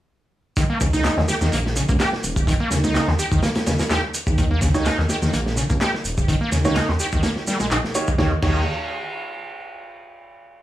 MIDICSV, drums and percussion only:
0, 0, Header, 1, 2, 480
1, 0, Start_track
1, 0, Tempo, 476190
1, 575, Time_signature, 4, 2, 24, 8
1, 10710, End_track
2, 0, Start_track
2, 0, Title_t, "Drums"
2, 573, Note_on_c, 9, 36, 114
2, 574, Note_on_c, 9, 82, 34
2, 576, Note_on_c, 9, 42, 89
2, 673, Note_off_c, 9, 36, 0
2, 675, Note_off_c, 9, 82, 0
2, 676, Note_off_c, 9, 42, 0
2, 815, Note_on_c, 9, 36, 105
2, 815, Note_on_c, 9, 82, 80
2, 818, Note_on_c, 9, 42, 64
2, 915, Note_off_c, 9, 82, 0
2, 916, Note_off_c, 9, 36, 0
2, 919, Note_off_c, 9, 42, 0
2, 944, Note_on_c, 9, 82, 44
2, 947, Note_on_c, 9, 38, 39
2, 1045, Note_off_c, 9, 82, 0
2, 1047, Note_off_c, 9, 38, 0
2, 1054, Note_on_c, 9, 39, 108
2, 1054, Note_on_c, 9, 42, 99
2, 1054, Note_on_c, 9, 82, 33
2, 1056, Note_on_c, 9, 38, 112
2, 1155, Note_off_c, 9, 39, 0
2, 1155, Note_off_c, 9, 42, 0
2, 1155, Note_off_c, 9, 82, 0
2, 1157, Note_off_c, 9, 38, 0
2, 1194, Note_on_c, 9, 38, 43
2, 1294, Note_on_c, 9, 82, 76
2, 1295, Note_off_c, 9, 38, 0
2, 1297, Note_on_c, 9, 42, 67
2, 1307, Note_on_c, 9, 38, 52
2, 1395, Note_off_c, 9, 82, 0
2, 1398, Note_off_c, 9, 42, 0
2, 1407, Note_off_c, 9, 38, 0
2, 1424, Note_on_c, 9, 82, 44
2, 1428, Note_on_c, 9, 38, 52
2, 1525, Note_off_c, 9, 82, 0
2, 1529, Note_off_c, 9, 38, 0
2, 1536, Note_on_c, 9, 82, 33
2, 1546, Note_on_c, 9, 42, 89
2, 1637, Note_off_c, 9, 82, 0
2, 1647, Note_off_c, 9, 42, 0
2, 1677, Note_on_c, 9, 38, 40
2, 1776, Note_on_c, 9, 82, 73
2, 1777, Note_off_c, 9, 38, 0
2, 1780, Note_on_c, 9, 42, 69
2, 1877, Note_off_c, 9, 82, 0
2, 1881, Note_off_c, 9, 42, 0
2, 1904, Note_on_c, 9, 82, 44
2, 1907, Note_on_c, 9, 36, 104
2, 2005, Note_off_c, 9, 82, 0
2, 2008, Note_off_c, 9, 36, 0
2, 2013, Note_on_c, 9, 42, 84
2, 2015, Note_on_c, 9, 38, 107
2, 2017, Note_on_c, 9, 39, 110
2, 2017, Note_on_c, 9, 82, 33
2, 2114, Note_off_c, 9, 42, 0
2, 2116, Note_off_c, 9, 38, 0
2, 2118, Note_off_c, 9, 39, 0
2, 2118, Note_off_c, 9, 82, 0
2, 2145, Note_on_c, 9, 38, 50
2, 2246, Note_off_c, 9, 38, 0
2, 2255, Note_on_c, 9, 42, 66
2, 2255, Note_on_c, 9, 82, 77
2, 2356, Note_off_c, 9, 42, 0
2, 2356, Note_off_c, 9, 82, 0
2, 2382, Note_on_c, 9, 36, 93
2, 2386, Note_on_c, 9, 82, 46
2, 2483, Note_off_c, 9, 36, 0
2, 2487, Note_off_c, 9, 82, 0
2, 2492, Note_on_c, 9, 36, 113
2, 2497, Note_on_c, 9, 82, 34
2, 2505, Note_on_c, 9, 42, 91
2, 2593, Note_off_c, 9, 36, 0
2, 2598, Note_off_c, 9, 82, 0
2, 2606, Note_off_c, 9, 42, 0
2, 2729, Note_on_c, 9, 38, 41
2, 2737, Note_on_c, 9, 42, 65
2, 2737, Note_on_c, 9, 82, 79
2, 2830, Note_off_c, 9, 38, 0
2, 2838, Note_off_c, 9, 42, 0
2, 2838, Note_off_c, 9, 82, 0
2, 2864, Note_on_c, 9, 82, 45
2, 2868, Note_on_c, 9, 38, 54
2, 2965, Note_off_c, 9, 82, 0
2, 2968, Note_off_c, 9, 38, 0
2, 2976, Note_on_c, 9, 38, 116
2, 2978, Note_on_c, 9, 39, 108
2, 2978, Note_on_c, 9, 82, 34
2, 2980, Note_on_c, 9, 42, 97
2, 3077, Note_off_c, 9, 38, 0
2, 3078, Note_off_c, 9, 39, 0
2, 3078, Note_off_c, 9, 82, 0
2, 3080, Note_off_c, 9, 42, 0
2, 3100, Note_on_c, 9, 38, 43
2, 3201, Note_off_c, 9, 38, 0
2, 3217, Note_on_c, 9, 42, 68
2, 3217, Note_on_c, 9, 82, 76
2, 3318, Note_off_c, 9, 42, 0
2, 3318, Note_off_c, 9, 82, 0
2, 3343, Note_on_c, 9, 36, 102
2, 3345, Note_on_c, 9, 82, 44
2, 3443, Note_off_c, 9, 36, 0
2, 3446, Note_off_c, 9, 82, 0
2, 3454, Note_on_c, 9, 38, 110
2, 3457, Note_on_c, 9, 82, 33
2, 3458, Note_on_c, 9, 42, 88
2, 3555, Note_off_c, 9, 38, 0
2, 3558, Note_off_c, 9, 82, 0
2, 3559, Note_off_c, 9, 42, 0
2, 3580, Note_on_c, 9, 42, 75
2, 3586, Note_on_c, 9, 38, 98
2, 3681, Note_off_c, 9, 42, 0
2, 3687, Note_off_c, 9, 38, 0
2, 3695, Note_on_c, 9, 42, 76
2, 3698, Note_on_c, 9, 82, 76
2, 3702, Note_on_c, 9, 38, 115
2, 3795, Note_off_c, 9, 42, 0
2, 3799, Note_off_c, 9, 82, 0
2, 3802, Note_off_c, 9, 38, 0
2, 3822, Note_on_c, 9, 82, 45
2, 3825, Note_on_c, 9, 38, 102
2, 3833, Note_on_c, 9, 42, 84
2, 3923, Note_off_c, 9, 82, 0
2, 3926, Note_off_c, 9, 38, 0
2, 3934, Note_off_c, 9, 42, 0
2, 3936, Note_on_c, 9, 39, 116
2, 3936, Note_on_c, 9, 82, 35
2, 3940, Note_on_c, 9, 38, 123
2, 3944, Note_on_c, 9, 42, 87
2, 4037, Note_off_c, 9, 39, 0
2, 4037, Note_off_c, 9, 82, 0
2, 4041, Note_off_c, 9, 38, 0
2, 4044, Note_off_c, 9, 42, 0
2, 4175, Note_on_c, 9, 42, 62
2, 4176, Note_on_c, 9, 82, 78
2, 4276, Note_off_c, 9, 42, 0
2, 4276, Note_off_c, 9, 82, 0
2, 4303, Note_on_c, 9, 36, 103
2, 4305, Note_on_c, 9, 82, 46
2, 4403, Note_off_c, 9, 36, 0
2, 4406, Note_off_c, 9, 82, 0
2, 4414, Note_on_c, 9, 42, 95
2, 4417, Note_on_c, 9, 82, 33
2, 4419, Note_on_c, 9, 36, 114
2, 4515, Note_off_c, 9, 42, 0
2, 4518, Note_off_c, 9, 82, 0
2, 4520, Note_off_c, 9, 36, 0
2, 4649, Note_on_c, 9, 36, 96
2, 4655, Note_on_c, 9, 82, 79
2, 4663, Note_on_c, 9, 42, 77
2, 4749, Note_off_c, 9, 36, 0
2, 4756, Note_off_c, 9, 82, 0
2, 4764, Note_off_c, 9, 42, 0
2, 4785, Note_on_c, 9, 82, 43
2, 4786, Note_on_c, 9, 38, 38
2, 4885, Note_off_c, 9, 82, 0
2, 4887, Note_off_c, 9, 38, 0
2, 4895, Note_on_c, 9, 42, 94
2, 4896, Note_on_c, 9, 39, 112
2, 4896, Note_on_c, 9, 82, 33
2, 4903, Note_on_c, 9, 38, 113
2, 4996, Note_off_c, 9, 42, 0
2, 4997, Note_off_c, 9, 39, 0
2, 4997, Note_off_c, 9, 82, 0
2, 5004, Note_off_c, 9, 38, 0
2, 5028, Note_on_c, 9, 38, 40
2, 5128, Note_off_c, 9, 38, 0
2, 5133, Note_on_c, 9, 38, 56
2, 5134, Note_on_c, 9, 42, 65
2, 5136, Note_on_c, 9, 82, 76
2, 5234, Note_off_c, 9, 38, 0
2, 5235, Note_off_c, 9, 42, 0
2, 5237, Note_off_c, 9, 82, 0
2, 5266, Note_on_c, 9, 82, 43
2, 5267, Note_on_c, 9, 38, 49
2, 5367, Note_off_c, 9, 82, 0
2, 5368, Note_off_c, 9, 38, 0
2, 5375, Note_on_c, 9, 82, 31
2, 5379, Note_on_c, 9, 42, 94
2, 5475, Note_off_c, 9, 82, 0
2, 5480, Note_off_c, 9, 42, 0
2, 5508, Note_on_c, 9, 38, 40
2, 5609, Note_off_c, 9, 38, 0
2, 5616, Note_on_c, 9, 82, 76
2, 5624, Note_on_c, 9, 42, 70
2, 5717, Note_off_c, 9, 82, 0
2, 5725, Note_off_c, 9, 42, 0
2, 5745, Note_on_c, 9, 82, 43
2, 5747, Note_on_c, 9, 36, 99
2, 5846, Note_off_c, 9, 82, 0
2, 5848, Note_off_c, 9, 36, 0
2, 5856, Note_on_c, 9, 42, 96
2, 5858, Note_on_c, 9, 39, 115
2, 5858, Note_on_c, 9, 82, 33
2, 5861, Note_on_c, 9, 38, 125
2, 5957, Note_off_c, 9, 42, 0
2, 5959, Note_off_c, 9, 39, 0
2, 5959, Note_off_c, 9, 82, 0
2, 5962, Note_off_c, 9, 38, 0
2, 5990, Note_on_c, 9, 38, 45
2, 6091, Note_off_c, 9, 38, 0
2, 6097, Note_on_c, 9, 82, 78
2, 6106, Note_on_c, 9, 42, 62
2, 6198, Note_off_c, 9, 82, 0
2, 6207, Note_off_c, 9, 42, 0
2, 6226, Note_on_c, 9, 82, 46
2, 6227, Note_on_c, 9, 36, 99
2, 6326, Note_off_c, 9, 82, 0
2, 6328, Note_off_c, 9, 36, 0
2, 6334, Note_on_c, 9, 36, 108
2, 6336, Note_on_c, 9, 42, 86
2, 6338, Note_on_c, 9, 82, 33
2, 6435, Note_off_c, 9, 36, 0
2, 6437, Note_off_c, 9, 42, 0
2, 6439, Note_off_c, 9, 82, 0
2, 6572, Note_on_c, 9, 38, 41
2, 6573, Note_on_c, 9, 42, 70
2, 6575, Note_on_c, 9, 82, 76
2, 6673, Note_off_c, 9, 38, 0
2, 6673, Note_off_c, 9, 42, 0
2, 6676, Note_off_c, 9, 82, 0
2, 6703, Note_on_c, 9, 82, 43
2, 6708, Note_on_c, 9, 38, 53
2, 6804, Note_off_c, 9, 82, 0
2, 6809, Note_off_c, 9, 38, 0
2, 6811, Note_on_c, 9, 42, 98
2, 6817, Note_on_c, 9, 39, 111
2, 6817, Note_on_c, 9, 82, 31
2, 6819, Note_on_c, 9, 38, 127
2, 6911, Note_off_c, 9, 42, 0
2, 6917, Note_off_c, 9, 39, 0
2, 6917, Note_off_c, 9, 82, 0
2, 6920, Note_off_c, 9, 38, 0
2, 6941, Note_on_c, 9, 38, 44
2, 7042, Note_off_c, 9, 38, 0
2, 7053, Note_on_c, 9, 82, 75
2, 7067, Note_on_c, 9, 42, 75
2, 7154, Note_off_c, 9, 82, 0
2, 7168, Note_off_c, 9, 42, 0
2, 7181, Note_on_c, 9, 82, 43
2, 7184, Note_on_c, 9, 36, 101
2, 7282, Note_off_c, 9, 82, 0
2, 7285, Note_off_c, 9, 36, 0
2, 7287, Note_on_c, 9, 42, 88
2, 7288, Note_on_c, 9, 38, 97
2, 7293, Note_on_c, 9, 82, 30
2, 7388, Note_off_c, 9, 42, 0
2, 7389, Note_off_c, 9, 38, 0
2, 7394, Note_off_c, 9, 82, 0
2, 7418, Note_on_c, 9, 38, 41
2, 7519, Note_off_c, 9, 38, 0
2, 7531, Note_on_c, 9, 82, 72
2, 7536, Note_on_c, 9, 42, 62
2, 7539, Note_on_c, 9, 38, 51
2, 7632, Note_off_c, 9, 82, 0
2, 7637, Note_off_c, 9, 42, 0
2, 7640, Note_off_c, 9, 38, 0
2, 7658, Note_on_c, 9, 38, 47
2, 7661, Note_on_c, 9, 82, 41
2, 7759, Note_off_c, 9, 38, 0
2, 7762, Note_off_c, 9, 82, 0
2, 7774, Note_on_c, 9, 39, 114
2, 7774, Note_on_c, 9, 82, 31
2, 7777, Note_on_c, 9, 42, 78
2, 7874, Note_off_c, 9, 39, 0
2, 7874, Note_off_c, 9, 82, 0
2, 7877, Note_off_c, 9, 42, 0
2, 7906, Note_on_c, 9, 38, 40
2, 8007, Note_off_c, 9, 38, 0
2, 8010, Note_on_c, 9, 42, 67
2, 8013, Note_on_c, 9, 82, 74
2, 8110, Note_off_c, 9, 42, 0
2, 8114, Note_off_c, 9, 82, 0
2, 8141, Note_on_c, 9, 82, 43
2, 8145, Note_on_c, 9, 36, 94
2, 8242, Note_off_c, 9, 82, 0
2, 8246, Note_off_c, 9, 36, 0
2, 8249, Note_on_c, 9, 38, 80
2, 8253, Note_on_c, 9, 36, 107
2, 8349, Note_off_c, 9, 38, 0
2, 8353, Note_off_c, 9, 36, 0
2, 8490, Note_on_c, 9, 49, 82
2, 8493, Note_on_c, 9, 36, 115
2, 8591, Note_off_c, 9, 49, 0
2, 8594, Note_off_c, 9, 36, 0
2, 10710, End_track
0, 0, End_of_file